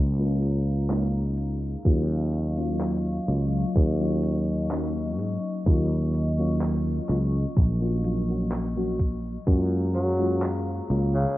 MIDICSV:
0, 0, Header, 1, 6, 480
1, 0, Start_track
1, 0, Tempo, 952381
1, 933, Time_signature, 4, 2, 24, 8
1, 5734, End_track
2, 0, Start_track
2, 0, Title_t, "Ambient pad"
2, 0, Program_c, 0, 92
2, 0, Note_on_c, 0, 68, 85
2, 0, Note_on_c, 0, 77, 72
2, 0, Note_on_c, 0, 82, 91
2, 913, Note_off_c, 0, 77, 0
2, 914, Note_off_c, 0, 68, 0
2, 914, Note_off_c, 0, 82, 0
2, 933, Note_on_c, 0, 75, 74
2, 933, Note_on_c, 0, 77, 77
2, 933, Note_on_c, 0, 85, 88
2, 934, Note_on_c, 0, 54, 83
2, 2834, Note_off_c, 0, 77, 0
2, 4753, Note_off_c, 0, 75, 0
2, 4753, Note_off_c, 0, 85, 0
2, 4754, Note_off_c, 0, 54, 0
2, 4774, Note_on_c, 0, 68, 83
2, 4775, Note_on_c, 0, 77, 73
2, 4775, Note_on_c, 0, 82, 89
2, 5734, Note_off_c, 0, 68, 0
2, 5734, Note_off_c, 0, 77, 0
2, 5734, Note_off_c, 0, 82, 0
2, 5734, End_track
3, 0, Start_track
3, 0, Title_t, "FM electric piano"
3, 0, Program_c, 1, 5
3, 0, Note_on_c, 1, 56, 74
3, 0, Note_on_c, 1, 58, 69
3, 0, Note_on_c, 1, 61, 66
3, 0, Note_on_c, 1, 65, 84
3, 66, Note_off_c, 1, 56, 0
3, 66, Note_off_c, 1, 58, 0
3, 68, Note_off_c, 1, 61, 0
3, 69, Note_off_c, 1, 65, 0
3, 93, Note_on_c, 1, 56, 79
3, 96, Note_on_c, 1, 58, 76
3, 98, Note_on_c, 1, 61, 73
3, 101, Note_on_c, 1, 65, 88
3, 424, Note_off_c, 1, 56, 0
3, 425, Note_off_c, 1, 58, 0
3, 426, Note_off_c, 1, 61, 0
3, 427, Note_off_c, 1, 65, 0
3, 448, Note_on_c, 1, 56, 88
3, 450, Note_on_c, 1, 58, 82
3, 453, Note_on_c, 1, 61, 77
3, 455, Note_on_c, 1, 63, 98
3, 903, Note_off_c, 1, 56, 0
3, 904, Note_off_c, 1, 58, 0
3, 905, Note_off_c, 1, 61, 0
3, 907, Note_off_c, 1, 63, 0
3, 931, Note_on_c, 1, 54, 79
3, 932, Note_on_c, 1, 58, 72
3, 935, Note_on_c, 1, 61, 71
3, 937, Note_on_c, 1, 65, 87
3, 1266, Note_off_c, 1, 54, 0
3, 1267, Note_off_c, 1, 58, 0
3, 1268, Note_off_c, 1, 61, 0
3, 1270, Note_off_c, 1, 65, 0
3, 1293, Note_on_c, 1, 54, 87
3, 1296, Note_on_c, 1, 58, 81
3, 1298, Note_on_c, 1, 61, 78
3, 1301, Note_on_c, 1, 65, 99
3, 1624, Note_off_c, 1, 54, 0
3, 1625, Note_off_c, 1, 58, 0
3, 1626, Note_off_c, 1, 61, 0
3, 1627, Note_off_c, 1, 65, 0
3, 1648, Note_on_c, 1, 54, 73
3, 1650, Note_on_c, 1, 58, 72
3, 1653, Note_on_c, 1, 61, 68
3, 1655, Note_on_c, 1, 65, 82
3, 1985, Note_off_c, 1, 54, 0
3, 1986, Note_off_c, 1, 58, 0
3, 1988, Note_off_c, 1, 61, 0
3, 1989, Note_off_c, 1, 65, 0
3, 2014, Note_on_c, 1, 54, 82
3, 2016, Note_on_c, 1, 58, 76
3, 2018, Note_on_c, 1, 61, 72
3, 2020, Note_on_c, 1, 65, 86
3, 2344, Note_off_c, 1, 54, 0
3, 2345, Note_off_c, 1, 58, 0
3, 2346, Note_off_c, 1, 61, 0
3, 2347, Note_off_c, 1, 65, 0
3, 2369, Note_on_c, 1, 54, 88
3, 2371, Note_on_c, 1, 58, 83
3, 2374, Note_on_c, 1, 61, 77
3, 2377, Note_on_c, 1, 63, 100
3, 2823, Note_off_c, 1, 54, 0
3, 2824, Note_off_c, 1, 58, 0
3, 2826, Note_off_c, 1, 61, 0
3, 2827, Note_off_c, 1, 63, 0
3, 2850, Note_on_c, 1, 54, 75
3, 2852, Note_on_c, 1, 58, 73
3, 2855, Note_on_c, 1, 61, 71
3, 2858, Note_on_c, 1, 65, 85
3, 3186, Note_off_c, 1, 54, 0
3, 3187, Note_off_c, 1, 58, 0
3, 3189, Note_off_c, 1, 61, 0
3, 3190, Note_off_c, 1, 65, 0
3, 3215, Note_on_c, 1, 54, 87
3, 3217, Note_on_c, 1, 58, 81
3, 3220, Note_on_c, 1, 61, 80
3, 3223, Note_on_c, 1, 65, 92
3, 3544, Note_off_c, 1, 54, 0
3, 3545, Note_off_c, 1, 58, 0
3, 3547, Note_off_c, 1, 61, 0
3, 3548, Note_off_c, 1, 65, 0
3, 3570, Note_on_c, 1, 54, 76
3, 3572, Note_on_c, 1, 58, 66
3, 3575, Note_on_c, 1, 61, 70
3, 3577, Note_on_c, 1, 65, 81
3, 3906, Note_off_c, 1, 54, 0
3, 3907, Note_off_c, 1, 58, 0
3, 3909, Note_off_c, 1, 61, 0
3, 3910, Note_off_c, 1, 65, 0
3, 3933, Note_on_c, 1, 54, 77
3, 3936, Note_on_c, 1, 58, 70
3, 3939, Note_on_c, 1, 61, 73
3, 3940, Note_on_c, 1, 65, 83
3, 4028, Note_off_c, 1, 54, 0
3, 4030, Note_off_c, 1, 58, 0
3, 4031, Note_off_c, 1, 61, 0
3, 4032, Note_off_c, 1, 65, 0
3, 4050, Note_on_c, 1, 54, 76
3, 4052, Note_on_c, 1, 58, 71
3, 4055, Note_on_c, 1, 61, 71
3, 4057, Note_on_c, 1, 65, 84
3, 4146, Note_off_c, 1, 54, 0
3, 4147, Note_off_c, 1, 58, 0
3, 4148, Note_off_c, 1, 61, 0
3, 4150, Note_off_c, 1, 65, 0
3, 4175, Note_on_c, 1, 54, 68
3, 4178, Note_on_c, 1, 58, 64
3, 4180, Note_on_c, 1, 61, 67
3, 4183, Note_on_c, 1, 66, 78
3, 4387, Note_off_c, 1, 54, 0
3, 4388, Note_off_c, 1, 58, 0
3, 4389, Note_off_c, 1, 61, 0
3, 4390, Note_off_c, 1, 66, 0
3, 4414, Note_on_c, 1, 54, 76
3, 4417, Note_on_c, 1, 58, 72
3, 4420, Note_on_c, 1, 61, 68
3, 4422, Note_on_c, 1, 66, 86
3, 4535, Note_off_c, 1, 54, 0
3, 4537, Note_off_c, 1, 58, 0
3, 4538, Note_off_c, 1, 61, 0
3, 4539, Note_off_c, 1, 66, 0
3, 4771, Note_on_c, 1, 56, 76
3, 4772, Note_on_c, 1, 58, 74
3, 4775, Note_on_c, 1, 61, 71
3, 4778, Note_on_c, 1, 65, 84
3, 5106, Note_off_c, 1, 56, 0
3, 5107, Note_off_c, 1, 58, 0
3, 5109, Note_off_c, 1, 61, 0
3, 5110, Note_off_c, 1, 65, 0
3, 5132, Note_on_c, 1, 56, 85
3, 5135, Note_on_c, 1, 58, 77
3, 5137, Note_on_c, 1, 61, 80
3, 5140, Note_on_c, 1, 65, 97
3, 5463, Note_off_c, 1, 56, 0
3, 5464, Note_off_c, 1, 58, 0
3, 5465, Note_off_c, 1, 61, 0
3, 5467, Note_off_c, 1, 65, 0
3, 5489, Note_on_c, 1, 56, 75
3, 5491, Note_on_c, 1, 58, 67
3, 5494, Note_on_c, 1, 61, 68
3, 5496, Note_on_c, 1, 65, 84
3, 5734, Note_off_c, 1, 56, 0
3, 5734, Note_off_c, 1, 58, 0
3, 5734, Note_off_c, 1, 61, 0
3, 5734, Note_off_c, 1, 65, 0
3, 5734, End_track
4, 0, Start_track
4, 0, Title_t, "Tenor saxophone"
4, 0, Program_c, 2, 66
4, 5013, Note_on_c, 2, 54, 91
4, 5303, Note_off_c, 2, 54, 0
4, 5617, Note_on_c, 2, 49, 92
4, 5734, Note_off_c, 2, 49, 0
4, 5734, End_track
5, 0, Start_track
5, 0, Title_t, "Fretless electric bass"
5, 0, Program_c, 3, 35
5, 0, Note_on_c, 3, 37, 98
5, 882, Note_off_c, 3, 37, 0
5, 934, Note_on_c, 3, 39, 96
5, 1601, Note_off_c, 3, 39, 0
5, 1653, Note_on_c, 3, 37, 83
5, 1828, Note_off_c, 3, 37, 0
5, 1893, Note_on_c, 3, 39, 95
5, 2614, Note_off_c, 3, 39, 0
5, 2614, Note_on_c, 3, 44, 93
5, 2703, Note_off_c, 3, 44, 0
5, 2853, Note_on_c, 3, 39, 96
5, 3521, Note_off_c, 3, 39, 0
5, 3574, Note_on_c, 3, 37, 86
5, 3749, Note_off_c, 3, 37, 0
5, 3813, Note_on_c, 3, 34, 93
5, 4721, Note_off_c, 3, 34, 0
5, 4773, Note_on_c, 3, 42, 94
5, 5441, Note_off_c, 3, 42, 0
5, 5493, Note_on_c, 3, 37, 88
5, 5668, Note_off_c, 3, 37, 0
5, 5734, End_track
6, 0, Start_track
6, 0, Title_t, "Drums"
6, 214, Note_on_c, 9, 42, 65
6, 264, Note_off_c, 9, 42, 0
6, 454, Note_on_c, 9, 39, 118
6, 454, Note_on_c, 9, 42, 80
6, 505, Note_off_c, 9, 39, 0
6, 505, Note_off_c, 9, 42, 0
6, 693, Note_on_c, 9, 42, 71
6, 743, Note_off_c, 9, 42, 0
6, 934, Note_on_c, 9, 36, 115
6, 934, Note_on_c, 9, 42, 69
6, 984, Note_off_c, 9, 36, 0
6, 984, Note_off_c, 9, 42, 0
6, 1174, Note_on_c, 9, 42, 64
6, 1224, Note_off_c, 9, 42, 0
6, 1299, Note_on_c, 9, 42, 36
6, 1349, Note_off_c, 9, 42, 0
6, 1415, Note_on_c, 9, 39, 120
6, 1415, Note_on_c, 9, 42, 74
6, 1465, Note_off_c, 9, 39, 0
6, 1465, Note_off_c, 9, 42, 0
6, 1655, Note_on_c, 9, 42, 62
6, 1705, Note_off_c, 9, 42, 0
6, 1893, Note_on_c, 9, 36, 111
6, 1894, Note_on_c, 9, 42, 79
6, 1944, Note_off_c, 9, 36, 0
6, 1944, Note_off_c, 9, 42, 0
6, 2134, Note_on_c, 9, 42, 64
6, 2185, Note_off_c, 9, 42, 0
6, 2374, Note_on_c, 9, 39, 118
6, 2374, Note_on_c, 9, 42, 79
6, 2424, Note_off_c, 9, 39, 0
6, 2424, Note_off_c, 9, 42, 0
6, 2614, Note_on_c, 9, 42, 66
6, 2665, Note_off_c, 9, 42, 0
6, 2853, Note_on_c, 9, 36, 117
6, 2855, Note_on_c, 9, 42, 70
6, 2903, Note_off_c, 9, 36, 0
6, 2905, Note_off_c, 9, 42, 0
6, 3094, Note_on_c, 9, 42, 59
6, 3144, Note_off_c, 9, 42, 0
6, 3218, Note_on_c, 9, 42, 36
6, 3268, Note_off_c, 9, 42, 0
6, 3333, Note_on_c, 9, 39, 115
6, 3333, Note_on_c, 9, 42, 74
6, 3384, Note_off_c, 9, 39, 0
6, 3384, Note_off_c, 9, 42, 0
6, 3574, Note_on_c, 9, 39, 36
6, 3574, Note_on_c, 9, 42, 59
6, 3624, Note_off_c, 9, 39, 0
6, 3624, Note_off_c, 9, 42, 0
6, 3813, Note_on_c, 9, 36, 109
6, 3813, Note_on_c, 9, 42, 77
6, 3863, Note_off_c, 9, 36, 0
6, 3864, Note_off_c, 9, 42, 0
6, 4054, Note_on_c, 9, 42, 61
6, 4104, Note_off_c, 9, 42, 0
6, 4294, Note_on_c, 9, 39, 116
6, 4294, Note_on_c, 9, 42, 73
6, 4344, Note_off_c, 9, 39, 0
6, 4344, Note_off_c, 9, 42, 0
6, 4533, Note_on_c, 9, 36, 57
6, 4534, Note_on_c, 9, 42, 66
6, 4583, Note_off_c, 9, 36, 0
6, 4584, Note_off_c, 9, 42, 0
6, 4773, Note_on_c, 9, 36, 110
6, 4774, Note_on_c, 9, 42, 69
6, 4824, Note_off_c, 9, 36, 0
6, 4824, Note_off_c, 9, 42, 0
6, 5014, Note_on_c, 9, 42, 60
6, 5064, Note_off_c, 9, 42, 0
6, 5139, Note_on_c, 9, 42, 32
6, 5189, Note_off_c, 9, 42, 0
6, 5254, Note_on_c, 9, 39, 110
6, 5254, Note_on_c, 9, 42, 73
6, 5304, Note_off_c, 9, 39, 0
6, 5304, Note_off_c, 9, 42, 0
6, 5494, Note_on_c, 9, 42, 59
6, 5545, Note_off_c, 9, 42, 0
6, 5734, End_track
0, 0, End_of_file